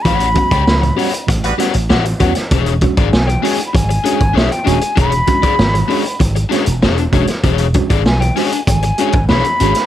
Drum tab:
HH |xxxx-xoxxxxx-xxx|xxxx-xoxxxxx-xxx|xxxx-xoxxxxx-xxx|xxxx-xoxxxxx-xxx|
SD |----o-----o-o--o|----o-------o---|----o-----o-o--o|----o-------o--o|
BD |o-oo----o-----o-|o-oo----o--o----|o-oo----o-----o-|o-oo----o--o----|